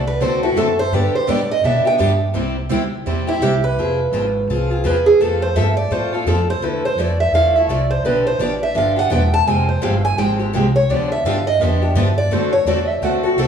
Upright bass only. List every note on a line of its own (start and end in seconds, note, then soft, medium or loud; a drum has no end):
0.00 0.19 C2 medium
0.20 0.54 D2 loud
0.55 0.91 F#2 medium
0.91 1.12 G2 medium
1.14 muted upright bass stroke soft
1.28 1.63 A2 loud
1.63 1.84 B2 loud
1.85 muted upright bass stroke soft
1.99 2.33 G2 medium
2.34 2.69 C2 medium
2.70 3.05 D2 medium
3.06 3.39 E2 medium
3.40 3.76 C2 loud
3.76 4.11 F1 medium
4.12 4.47 G#1 medium
4.48 4.83 C2 medium
4.84 5.19 E2 medium
5.20 5.55 F2 medium
5.55 5.90 G2 medium
5.90 6.25 A2 medium
6.25 6.59 F2 loud
6.60 6.96 D2 medium
6.96 7.31 F2 medium
7.31 7.67 E2 medium
7.67 8.03 C2 loud
8.03 8.38 B1 medium
8.38 8.74 A1 medium
8.75 9.10 G1 loud
9.10 9.46 E1 loud
9.46 9.81 F1 medium
9.82 10.17 G1 loud
10.18 10.53 G#1 medium
10.54 10.89 C2 loud
10.89 11.23 D2 medium
11.24 11.59 G2 medium
11.59 11.94 F2 medium
11.94 12.29 G2 loud
12.29 12.64 F#2 medium
12.65 13.00 E2 loud
13.01 13.36 D2 medium
13.36 13.47 C2 loud